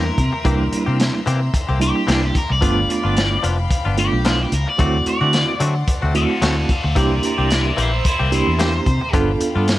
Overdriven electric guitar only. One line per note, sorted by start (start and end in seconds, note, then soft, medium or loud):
0.00 1.23 A#4 medium
1.83 2.08 G4 medium
2.10 2.24 D4 medium
2.25 2.36 G4 medium
2.37 2.51 A#4 medium
2.52 2.89 D5 medium
2.92 3.43 D5 loud
4.00 4.25 G4 medium
4.27 4.41 D4 medium
4.43 4.53 G4 medium
4.55 4.68 A#4 medium
4.70 5.07 D5 medium
5.09 5.60 D5 medium
6.16 6.42 A4 medium
6.16 6.42 F5 loud
6.43 6.68 A4 medium
6.43 6.69 F5 medium
6.71 6.95 A4 medium
6.71 6.97 F5 medium
6.98 7.22 A#4 medium
6.98 7.24 D5 medium
7.25 7.50 A#4 medium
7.25 7.51 D5 medium
7.52 7.77 A#4 medium
7.52 7.78 D5 medium
7.80 8.04 E4 medium
7.80 8.05 C5 medium
8.07 8.31 E4 medium
8.07 8.32 C5 medium
8.34 8.58 E4 medium
8.34 8.60 C5 medium
8.61 9.13 C5 loud